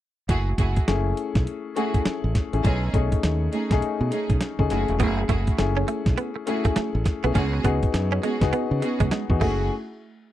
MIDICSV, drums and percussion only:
0, 0, Header, 1, 2, 480
1, 0, Start_track
1, 0, Tempo, 588235
1, 238, Time_signature, 4, 2, 24, 8
1, 8424, End_track
2, 0, Start_track
2, 0, Title_t, "Drums"
2, 237, Note_on_c, 9, 36, 112
2, 237, Note_on_c, 9, 42, 70
2, 318, Note_off_c, 9, 42, 0
2, 319, Note_off_c, 9, 36, 0
2, 474, Note_on_c, 9, 36, 97
2, 476, Note_on_c, 9, 42, 71
2, 556, Note_off_c, 9, 36, 0
2, 558, Note_off_c, 9, 42, 0
2, 624, Note_on_c, 9, 42, 56
2, 627, Note_on_c, 9, 36, 95
2, 706, Note_off_c, 9, 42, 0
2, 708, Note_off_c, 9, 36, 0
2, 717, Note_on_c, 9, 38, 113
2, 717, Note_on_c, 9, 42, 75
2, 798, Note_off_c, 9, 38, 0
2, 799, Note_off_c, 9, 42, 0
2, 957, Note_on_c, 9, 42, 77
2, 1039, Note_off_c, 9, 42, 0
2, 1104, Note_on_c, 9, 36, 91
2, 1105, Note_on_c, 9, 38, 67
2, 1105, Note_on_c, 9, 42, 59
2, 1186, Note_off_c, 9, 36, 0
2, 1186, Note_off_c, 9, 42, 0
2, 1187, Note_off_c, 9, 38, 0
2, 1200, Note_on_c, 9, 42, 69
2, 1282, Note_off_c, 9, 42, 0
2, 1440, Note_on_c, 9, 42, 89
2, 1522, Note_off_c, 9, 42, 0
2, 1586, Note_on_c, 9, 36, 90
2, 1586, Note_on_c, 9, 42, 53
2, 1667, Note_off_c, 9, 36, 0
2, 1668, Note_off_c, 9, 42, 0
2, 1677, Note_on_c, 9, 38, 100
2, 1677, Note_on_c, 9, 42, 77
2, 1758, Note_off_c, 9, 38, 0
2, 1758, Note_off_c, 9, 42, 0
2, 1918, Note_on_c, 9, 36, 87
2, 1918, Note_on_c, 9, 38, 72
2, 1919, Note_on_c, 9, 42, 87
2, 1999, Note_off_c, 9, 38, 0
2, 2000, Note_off_c, 9, 36, 0
2, 2000, Note_off_c, 9, 42, 0
2, 2067, Note_on_c, 9, 42, 48
2, 2149, Note_off_c, 9, 42, 0
2, 2159, Note_on_c, 9, 36, 123
2, 2159, Note_on_c, 9, 42, 74
2, 2240, Note_off_c, 9, 36, 0
2, 2240, Note_off_c, 9, 42, 0
2, 2396, Note_on_c, 9, 36, 97
2, 2399, Note_on_c, 9, 42, 66
2, 2478, Note_off_c, 9, 36, 0
2, 2480, Note_off_c, 9, 42, 0
2, 2546, Note_on_c, 9, 42, 59
2, 2548, Note_on_c, 9, 36, 91
2, 2628, Note_off_c, 9, 42, 0
2, 2630, Note_off_c, 9, 36, 0
2, 2639, Note_on_c, 9, 38, 124
2, 2639, Note_on_c, 9, 42, 74
2, 2720, Note_off_c, 9, 38, 0
2, 2721, Note_off_c, 9, 42, 0
2, 2878, Note_on_c, 9, 42, 76
2, 2959, Note_off_c, 9, 42, 0
2, 3025, Note_on_c, 9, 36, 91
2, 3026, Note_on_c, 9, 42, 60
2, 3027, Note_on_c, 9, 38, 68
2, 3107, Note_off_c, 9, 36, 0
2, 3107, Note_off_c, 9, 42, 0
2, 3108, Note_off_c, 9, 38, 0
2, 3120, Note_on_c, 9, 42, 68
2, 3201, Note_off_c, 9, 42, 0
2, 3360, Note_on_c, 9, 42, 89
2, 3441, Note_off_c, 9, 42, 0
2, 3506, Note_on_c, 9, 36, 96
2, 3506, Note_on_c, 9, 42, 55
2, 3587, Note_off_c, 9, 42, 0
2, 3588, Note_off_c, 9, 36, 0
2, 3595, Note_on_c, 9, 38, 108
2, 3595, Note_on_c, 9, 42, 73
2, 3677, Note_off_c, 9, 38, 0
2, 3677, Note_off_c, 9, 42, 0
2, 3745, Note_on_c, 9, 36, 91
2, 3827, Note_off_c, 9, 36, 0
2, 3836, Note_on_c, 9, 38, 66
2, 3837, Note_on_c, 9, 42, 81
2, 3918, Note_off_c, 9, 38, 0
2, 3919, Note_off_c, 9, 42, 0
2, 3986, Note_on_c, 9, 42, 48
2, 4068, Note_off_c, 9, 42, 0
2, 4077, Note_on_c, 9, 42, 71
2, 4078, Note_on_c, 9, 36, 113
2, 4158, Note_off_c, 9, 42, 0
2, 4160, Note_off_c, 9, 36, 0
2, 4316, Note_on_c, 9, 36, 100
2, 4316, Note_on_c, 9, 42, 67
2, 4397, Note_off_c, 9, 36, 0
2, 4398, Note_off_c, 9, 42, 0
2, 4465, Note_on_c, 9, 42, 54
2, 4468, Note_on_c, 9, 36, 90
2, 4547, Note_off_c, 9, 42, 0
2, 4550, Note_off_c, 9, 36, 0
2, 4557, Note_on_c, 9, 38, 110
2, 4558, Note_on_c, 9, 42, 69
2, 4639, Note_off_c, 9, 38, 0
2, 4640, Note_off_c, 9, 42, 0
2, 4798, Note_on_c, 9, 42, 80
2, 4880, Note_off_c, 9, 42, 0
2, 4945, Note_on_c, 9, 36, 94
2, 4946, Note_on_c, 9, 42, 53
2, 4947, Note_on_c, 9, 38, 67
2, 5027, Note_off_c, 9, 36, 0
2, 5028, Note_off_c, 9, 38, 0
2, 5028, Note_off_c, 9, 42, 0
2, 5040, Note_on_c, 9, 42, 63
2, 5121, Note_off_c, 9, 42, 0
2, 5279, Note_on_c, 9, 42, 93
2, 5360, Note_off_c, 9, 42, 0
2, 5425, Note_on_c, 9, 42, 57
2, 5426, Note_on_c, 9, 36, 98
2, 5506, Note_off_c, 9, 42, 0
2, 5508, Note_off_c, 9, 36, 0
2, 5516, Note_on_c, 9, 38, 100
2, 5516, Note_on_c, 9, 42, 72
2, 5598, Note_off_c, 9, 38, 0
2, 5598, Note_off_c, 9, 42, 0
2, 5756, Note_on_c, 9, 38, 64
2, 5758, Note_on_c, 9, 36, 84
2, 5758, Note_on_c, 9, 42, 85
2, 5838, Note_off_c, 9, 38, 0
2, 5839, Note_off_c, 9, 42, 0
2, 5840, Note_off_c, 9, 36, 0
2, 5906, Note_on_c, 9, 42, 46
2, 5987, Note_off_c, 9, 42, 0
2, 5998, Note_on_c, 9, 42, 71
2, 5999, Note_on_c, 9, 36, 113
2, 6080, Note_off_c, 9, 42, 0
2, 6081, Note_off_c, 9, 36, 0
2, 6236, Note_on_c, 9, 36, 96
2, 6238, Note_on_c, 9, 42, 70
2, 6318, Note_off_c, 9, 36, 0
2, 6320, Note_off_c, 9, 42, 0
2, 6386, Note_on_c, 9, 42, 58
2, 6389, Note_on_c, 9, 36, 102
2, 6468, Note_off_c, 9, 42, 0
2, 6470, Note_off_c, 9, 36, 0
2, 6478, Note_on_c, 9, 38, 107
2, 6479, Note_on_c, 9, 42, 76
2, 6560, Note_off_c, 9, 38, 0
2, 6561, Note_off_c, 9, 42, 0
2, 6719, Note_on_c, 9, 42, 76
2, 6801, Note_off_c, 9, 42, 0
2, 6865, Note_on_c, 9, 36, 90
2, 6866, Note_on_c, 9, 42, 57
2, 6867, Note_on_c, 9, 38, 73
2, 6947, Note_off_c, 9, 36, 0
2, 6948, Note_off_c, 9, 42, 0
2, 6949, Note_off_c, 9, 38, 0
2, 6960, Note_on_c, 9, 42, 66
2, 7041, Note_off_c, 9, 42, 0
2, 7200, Note_on_c, 9, 42, 90
2, 7281, Note_off_c, 9, 42, 0
2, 7345, Note_on_c, 9, 42, 53
2, 7346, Note_on_c, 9, 36, 102
2, 7426, Note_off_c, 9, 42, 0
2, 7428, Note_off_c, 9, 36, 0
2, 7437, Note_on_c, 9, 38, 105
2, 7437, Note_on_c, 9, 42, 74
2, 7518, Note_off_c, 9, 38, 0
2, 7518, Note_off_c, 9, 42, 0
2, 7586, Note_on_c, 9, 36, 93
2, 7667, Note_off_c, 9, 36, 0
2, 7679, Note_on_c, 9, 36, 103
2, 7679, Note_on_c, 9, 49, 88
2, 7760, Note_off_c, 9, 36, 0
2, 7760, Note_off_c, 9, 49, 0
2, 8424, End_track
0, 0, End_of_file